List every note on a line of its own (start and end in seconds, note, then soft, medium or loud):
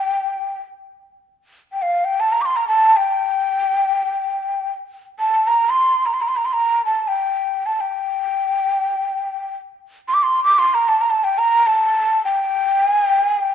0.00 0.60 G5 medium
1.73 1.84 G5 medium
1.82 2.06 F5 medium
2.05 2.22 G5 medium
2.20 2.34 A5 medium
2.32 2.43 A#5 medium
2.41 2.47 D6 medium
2.46 2.58 C6 medium
2.56 2.67 A#5 medium
2.68 2.98 A5 medium
2.97 4.72 G5 medium
5.20 5.49 A5 medium
5.47 5.71 A#5 medium
5.70 6.07 C6 medium
6.06 6.15 A#5 medium
6.14 6.23 C6 medium
6.21 6.30 A#5 medium
6.28 6.38 C6 medium
6.36 6.47 A#5 medium
6.45 6.55 C6 medium
6.53 6.85 A#5 medium
6.85 7.09 A5 medium
7.08 7.68 G5 medium
7.66 7.82 A5 medium
7.81 9.53 G5 medium
10.08 10.15 C6 medium
10.14 10.25 D6 medium
10.23 10.43 C6 medium
10.44 10.60 D6 medium
10.59 10.76 C6 medium
10.74 10.90 A#5 medium
10.88 11.02 A5 medium
11.01 11.12 A#5 medium
11.10 11.25 A5 medium
11.24 11.40 G5 medium
11.38 11.68 A#5 medium
11.67 12.24 A5 medium
12.25 12.88 G5 medium
12.88 13.05 G#5 medium
13.05 13.24 G5 medium
13.24 13.41 G#5 medium
13.41 13.54 G5 medium